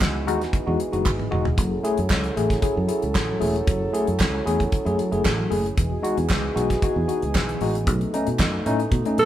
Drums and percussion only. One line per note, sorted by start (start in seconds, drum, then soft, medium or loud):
0.00 kick loud
0.00 snare loud
0.00 clap medium
0.02 clap medium
0.28 closed hi-hat medium
0.41 snare soft
0.41 closed hi-hat soft
0.53 kick loud
0.53 closed hi-hat medium
0.80 closed hi-hat medium
0.93 closed hi-hat soft
1.05 kick loud
1.05 clap medium
1.05 high tom medium
1.19 mid tom medium
1.32 mid tom medium
1.45 floor tom medium
1.58 kick loud
1.58 closed hi-hat medium
1.85 closed hi-hat medium
1.98 closed hi-hat soft
2.10 kick loud
2.10 snare loud
2.10 clap medium
2.11 clap medium
2.24 closed hi-hat soft
2.37 closed hi-hat medium
2.50 kick medium
2.50 snare soft
2.50 closed hi-hat soft
2.62 kick loud
2.62 closed hi-hat medium
2.89 closed hi-hat medium
3.02 closed hi-hat soft
3.15 kick loud
3.15 snare loud
3.15 clap medium
3.41 open hi-hat medium
3.56 closed hi-hat soft
3.67 kick loud
3.67 closed hi-hat medium
3.94 closed hi-hat medium
4.07 closed hi-hat soft
4.19 kick loud
4.19 snare loud
4.19 clap medium
4.21 clap loud
4.47 closed hi-hat medium
4.60 kick medium
4.60 closed hi-hat soft
4.72 kick loud
4.72 closed hi-hat medium
4.86 closed hi-hat soft
4.99 closed hi-hat medium
5.12 closed hi-hat soft
5.25 kick loud
5.25 snare loud
5.25 clap medium
5.52 open hi-hat medium
5.66 closed hi-hat soft
5.78 kick loud
5.78 closed hi-hat medium
6.04 closed hi-hat medium
6.18 closed hi-hat soft
6.29 kick loud
6.29 snare loud
6.29 clap medium
6.31 clap loud
6.57 closed hi-hat medium
6.70 kick medium
6.70 snare soft
6.70 closed hi-hat soft
6.82 kick loud
6.82 closed hi-hat medium
7.09 closed hi-hat medium
7.22 closed hi-hat soft
7.35 kick loud
7.35 snare loud
7.35 clap medium
7.49 closed hi-hat soft
7.61 open hi-hat medium
7.75 closed hi-hat soft
7.87 kick loud
7.87 closed hi-hat medium
8.01 closed hi-hat soft
8.14 closed hi-hat medium
8.27 closed hi-hat soft
8.39 kick loud
8.39 snare loud
8.39 clap medium
8.66 closed hi-hat medium
8.80 closed hi-hat soft
8.92 kick loud
8.92 closed hi-hat medium
9.05 closed hi-hat soft
9.18 closed hi-hat medium